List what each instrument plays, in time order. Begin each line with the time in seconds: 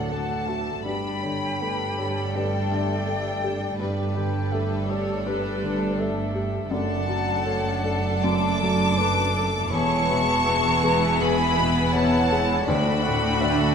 Already playing: cello section D2, double bass section D2, felt piano D2 A2 A3 F#4, viola section F#3 A3, violin section D4 A4 F#5, clarinet A4, flute D5
0.10 felt piano A3, flute F#5, clarinet F#5, violin section A5
0.48 felt piano F#4, clarinet E5
0.85 double bass section G1, felt piano G2, cello section G2, viola section G3 A3, violin section D4 A4 B5, clarinet D5, flute G5
1.23 felt piano D3, clarinet C#5
1.61 felt piano A3, clarinet B4
1.98 felt piano G4, clarinet C#5
2.34 felt piano G2, clarinet D5, flute D5, violin section G5
2.70 felt piano D3, clarinet E5
3.06 felt piano A3
3.43 felt piano G4
3.78 double bass section G1, cello section G2, felt piano G2, viola section G3 A3, violin section D4 A4 B4, flute G4, clarinet D5
4.16 felt piano D3, clarinet G5
4.52 felt piano A3, clarinet E5
4.88 felt piano G4, flute A4, violin section C#5, clarinet D5
5.25 felt piano G2, flute B4, clarinet B4, violin section D5
5.63 felt piano D3
5.99 felt piano A3, clarinet E5
6.34 felt piano G4
6.71 double bass section F#1, cello section F#2, felt piano F#2, viola section A3, violin section D4 A4 A5, clarinet D5, flute F#5
7.08 felt piano F#3
7.45 felt piano A3, clarinet C#5
7.84 felt piano A4, clarinet D5
8.23 felt piano F#2, flute A5, violin section D6
8.62 felt piano F#3
8.98 felt piano A3, clarinet B4
9.35 clarinet A4, felt piano A4
9.71 double bass section E1, cello section E2, felt piano E2, viola section E3 B3, violin section E4 G#4 C#6, clarinet C#5, flute A5
10.09 felt piano B2
10.45 felt piano B3, clarinet B4
10.83 felt piano G#3
11.19 felt piano E2, clarinet G#4, flute G#5, violin section B5
11.56 felt piano B2, clarinet B4
11.92 felt piano B3, clarinet C#5, flute F#5, violin section A5
12.31 felt piano G#3
12.65 double bass section D2, cello section D2, felt piano D2, viola section A3 D4, violin section F#4 A4 B5, clarinet D5, flute G5
13.03 felt piano A2, clarinet F#5
13.41 felt piano D4, clarinet E5